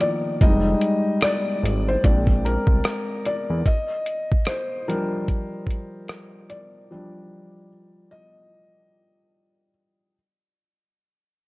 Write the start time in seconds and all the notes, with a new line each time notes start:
Already playing: D#3 F3 A#3 D4 A#4
0.01 D5, closed hi-hat
0.41 F1 G3 G#3 D#4 D#5, kick, closed hi-hat
0.81 closed hi-hat
1.21 D5, cross-stick, closed hi-hat
1.63 G#1, closed hi-hat
1.88 C5
2.04 A#1 G#3 C4 D4 D5, kick, closed hi-hat
2.27 kick
2.45 A#4, closed hi-hat
2.67 C2, kick
2.84 cross-stick, closed hi-hat
3.25 D5, closed hi-hat
3.50 E2
3.66 D#5, kick, closed hi-hat
4.06 closed hi-hat
4.32 kick
4.45 C5, cross-stick, closed hi-hat
4.88 F3 G3 D4 A#4, closed hi-hat
5.28 kick, closed hi-hat
5.67 kick, closed hi-hat
6.08 cross-stick, closed hi-hat
6.50 D5, closed hi-hat
6.91 F3 G3 D4
8.11 D#5